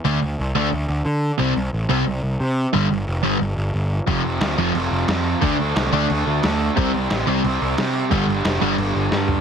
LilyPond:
<<
  \new Staff \with { instrumentName = "Distorted electric guitar" } { \clef bass \time 4/4 \key d \dorian \tempo 4 = 178 <d a d'>8 r4 <d a d'>8 r2 | <c g c'>8 r4 <c g c'>8 r2 | <g, d g>8 r4 <g, d g>8 r2 | <f, c f>8 r4 <f, c f>8 r2 |
<d a d'>8 r4 <d a d'>8 r2 | <c g c'>8 r4 <c g c'>8 r2 | <g, d g>8 r4 <g, d g>8 r2 | }
  \new Staff \with { instrumentName = "Overdriven electric guitar" } { \clef bass \time 4/4 \key d \dorian <d a d'>8 r4 <d a d'>8 r2 | <c g c'>8 r4 <c g c'>8 r2 | <g, d g>8 r4 <g, d g>8 r2 | <f, c f>8 r4 <f, c f>8 r2 |
<d a d'>8 r4 <d a d'>8 r2 | <c g c'>8 r4 <c g c'>8 r2 | <g, d g>8 r4 <g, d g>8 r2 | }
  \new Staff \with { instrumentName = "Distorted electric guitar" } { \clef bass \time 4/4 \key d \dorian r1 | r1 | r1 | <f, c f>4. <f, c f>2~ <f, c f>8 |
<d a d'>4. <d a d'>2~ <d a d'>8 | <c g c'>4. <c g c'>2~ <c g c'>8 | <g, d g>4. <g, d g>2~ <g, d g>8 | }
  \new Staff \with { instrumentName = "Picked electric bass" } { \clef bass \time 4/4 \key d \dorian d,8 d,8 c,8 d,8 d,8 d,8 d4 | c,8 c,8 a,,8 c,8 c,8 c,8 c4 | g,,8 g,,8 f,,8 g,,8 g,,8 g,,8 g,,4 | f,,8 f,,8 d,8 f,,8 f,,8 f,,8 f,4 |
d,8 d,8 c,8 d,8 d,8 d,8 d,4 | c,8 c,8 a,,8 c,8 c,8 c,8 c4 | g,,8 g,,8 f,,8 g,,8 g,,8 g,,8 g,4 | }
  \new DrumStaff \with { instrumentName = "Drums" } \drummode { \time 4/4 r4 r4 r4 r4 | r4 r4 r4 r4 | r4 r4 r4 r4 | <cymc bd>4 <cymc sn>4 cymc4 <cymc sn>4 |
<cymc bd>4 <cymc sn>4 cymc4 <cymc sn>4 | <cymc bd>4 <cymc sn>4 cymc4 <cymc sn>4 | <cymc bd>4 <cymc sn>4 cymc4 sn8 tomfh8 | }
>>